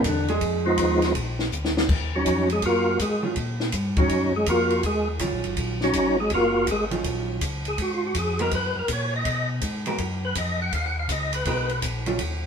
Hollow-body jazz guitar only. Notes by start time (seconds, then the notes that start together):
0.05 D3 D4
0.29 G#3 G#4
3.23 D#3 F#3 C#4 F4
3.98 D#3 F#3 C#4
5.20 D#3 F#3 C#4 F4
6.91 D#3 F#3 C#4 F4
8.40 G#3 B3 F#4 A#4
9.87 G#3 B3 F#4 A#4
11.47 G#3 B3 F#4 A#4
12.07 D#3 F#3 C#4 F4